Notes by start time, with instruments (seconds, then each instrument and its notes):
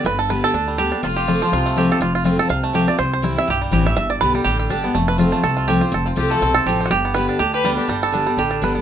0.04 upright bass G1, steel-string acoustic guitar G2, five-string banjo B4
0.19 five-string banjo A4
0.29 steel-string acoustic guitar D3 G3 B3 G4, five-string banjo B4
0.44 five-string banjo A4
0.54 upright bass D2, steel-string acoustic guitar D3, five-string banjo D4
0.68 five-string banjo G3
0.78 steel-string acoustic guitar D3 G3 B3 G4, five-string banjo G4
0.91 steel-string acoustic guitar B3 G4, five-string banjo D4
1.03 upright bass F1, steel-string acoustic guitar F2, fiddle F4, five-string banjo F4
1.16 five-string banjo G4
1.27 steel-string acoustic guitar F3 A3 C4 F4, five-string banjo F4
1.42 five-string banjo F3, steel-string acoustic guitar C4 F4, fiddle F4
1.52 upright bass C2, steel-string acoustic guitar C3, five-string banjo F4
1.66 five-string banjo A3
1.76 steel-string acoustic guitar F3 A3 C4 F4, five-string banjo G4
1.89 steel-string acoustic guitar C4 F4, five-string banjo A4
2.00 upright bass F1, steel-string acoustic guitar F2, five-string banjo F4
2.15 five-string banjo F4
2.24 steel-string acoustic guitar F3 A3 C4 F4, five-string banjo F4
2.36 steel-string acoustic guitar C4 F4, five-string banjo A4
2.49 upright bass C2, steel-string acoustic guitar C3, five-string banjo F5
2.63 five-string banjo A3
2.73 steel-string acoustic guitar F3 A3 C4 F4, five-string banjo G4
2.88 steel-string acoustic guitar C4 F4, five-string banjo D5
2.98 upright bass C2, steel-string acoustic guitar C3, five-string banjo C5
3.13 five-string banjo C5
3.22 steel-string acoustic guitar E3 G3 C4 E4, five-string banjo E4
3.36 steel-string acoustic guitar C4 E4, five-string banjo E5
3.48 upright bass B1, steel-string acoustic guitar G2, five-string banjo G4
3.61 five-string banjo G3
3.71 upright bass A1, steel-string acoustic guitar E3 G3 C4 E4, five-string banjo G4
3.85 steel-string acoustic guitar C4 E4, five-string banjo E5
3.96 upright bass G1, steel-string acoustic guitar G2, five-string banjo E5
4.10 five-string banjo D5
4.21 upright bass B1, steel-string acoustic guitar D3 G3 B3 G4, five-string banjo B4
4.34 five-string banjo G3, steel-string acoustic guitar B3 G4
4.44 upright bass A1, steel-string acoustic guitar D3, five-string banjo G4
4.59 five-string banjo G4
4.70 upright bass G1, steel-string acoustic guitar D3 G3 B3 G4, five-string banjo D4
4.83 five-string banjo B3, steel-string acoustic guitar B3 G4
4.95 upright bass F1, steel-string acoustic guitar F2, five-string banjo A3
5.08 five-string banjo B4
5.18 steel-string acoustic guitar F3 A3 C4 F4, five-string banjo F4
5.31 five-string banjo A3, steel-string acoustic guitar C4 F4
5.44 upright bass C2, steel-string acoustic guitar C3, five-string banjo A4
5.57 five-string banjo F4
5.68 steel-string acoustic guitar F3 A3 C4 F4, five-string banjo G4
5.81 five-string banjo C4, steel-string acoustic guitar C4 F4
5.92 upright bass F1, steel-string acoustic guitar F2, five-string banjo A4
6.06 five-string banjo C4, fiddle F4
6.16 upright bass C2, steel-string acoustic guitar F3 A3 C4 F4, five-string banjo F4, fiddle G4
6.30 five-string banjo A3, steel-string acoustic guitar C4 F4, fiddle A4
6.42 upright bass B1, steel-string acoustic guitar C3, five-string banjo C4
6.54 five-string banjo A4
6.66 upright bass A1, steel-string acoustic guitar F3 A3 C4 F4, five-string banjo G4
6.81 five-string banjo C4
6.86 five-string banjo F#4
6.91 upright bass G1, steel-string acoustic guitar G2, five-string banjo G4
7.05 five-string banjo B3
7.14 steel-string acoustic guitar D3 G3 B3 G4, five-string banjo B4
7.29 five-string banjo D4
7.39 upright bass D2, steel-string acoustic guitar D3, five-string banjo G4
7.54 five-string banjo G4, fiddle B4
7.64 steel-string acoustic guitar D3 G3 B3 G4, five-string banjo G3
7.76 steel-string acoustic guitar B3 G4, five-string banjo D4, fiddle G4
7.88 upright bass G1, steel-string acoustic guitar G2, five-string banjo G3
8.03 five-string banjo A4
8.12 steel-string acoustic guitar D3 G3 B3 G4, five-string banjo D4
8.27 five-string banjo G3, steel-string acoustic guitar B3 G4
8.37 upright bass A1, steel-string acoustic guitar D3, five-string banjo G4
8.51 five-string banjo D4
8.62 upright bass G1, steel-string acoustic guitar D3 G3 B3 G4, five-string banjo B4
8.75 five-string banjo B3, steel-string acoustic guitar B3 G4